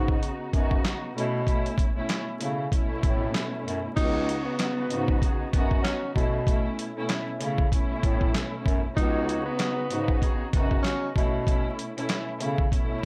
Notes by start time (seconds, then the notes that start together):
Already playing: G#2 C#3 B3 D#4 F#4
0.08 kick
0.23 closed hi-hat
0.53 F#2 C#3 B3 D#4 F#4, kick, closed hi-hat
0.71 kick
0.85 snare, clap, closed hi-hat
1.15 B2 A3 C#4 E4, closed hi-hat
1.46 B2 A3 C#4 E4, kick, closed hi-hat
1.66 closed hi-hat
1.78 kick, closed hi-hat
1.96 B2 A3 C#4 E4
2.09 snare, clap, closed hi-hat
2.39 B2 C#3 A3 C#4 E4, closed hi-hat
2.70 B2 A3 C#4 E4, kick, closed hi-hat
3.03 A2, kick, closed hi-hat
3.35 snare, clap, closed hi-hat
3.66 F#2, closed hi-hat
3.96 C#2 C#3 G#3 B3 D#4 F#4 C#5, kick, closed hi-hat, crash
4.29 closed hi-hat
4.45 B3
4.59 snare, clap, closed hi-hat
4.79 G#3 F#4 B4
4.90 G#2 C#3 B3 D#4 F#4, closed hi-hat
5.07 G#3 F#4 B4, kick
5.22 D#3 B3 G#4, kick, closed hi-hat
5.53 F#2 C#3 D#3 B3 D#4 F#4, kick, closed hi-hat
5.71 kick
5.83 C#4, snare, clap, closed hi-hat
6.15 B2 A3 C#4 E4, kick, closed hi-hat
6.46 B2 A3 C#4 E4, kick, closed hi-hat
6.79 closed hi-hat
6.96 B2 A3 C#4 E4
7.09 snare, clap, closed hi-hat
7.39 B2 C#3 A3 C#4 E4, closed hi-hat
7.58 kick
7.70 B2 A3 C#4 E4, kick, closed hi-hat
8.03 A2, kick, closed hi-hat
8.21 kick
8.35 snare, clap, closed hi-hat
8.66 F#2, kick, closed hi-hat
8.96 C#2 C#3 G#3 B3 D#4 F#4 C#5, kick, closed hi-hat
9.29 closed hi-hat
9.45 B3
9.59 snare, clap, closed hi-hat
9.76 G#3 F#4 B4
9.90 G#2 C#3 B3 D#4 F#4, closed hi-hat
10.07 G#3 F#4 B4, kick
10.21 D#3 B3 G#4, kick, closed hi-hat
10.53 F#2 C#3 D#3 B3 D#4 F#4, kick, closed hi-hat
10.71 kick
10.83 C#4, snare, clap, closed hi-hat
11.16 B2 A3 C#4 E4, kick, closed hi-hat
11.46 B2 A3 C#4 E4, kick, closed hi-hat
11.79 closed hi-hat
11.96 B2 A3 C#4 E4, closed hi-hat
12.09 snare, clap, closed hi-hat
12.39 B2 C#3 A3 C#4 E4, closed hi-hat
12.58 kick
12.70 B2 A3 C#4 E4, kick, closed hi-hat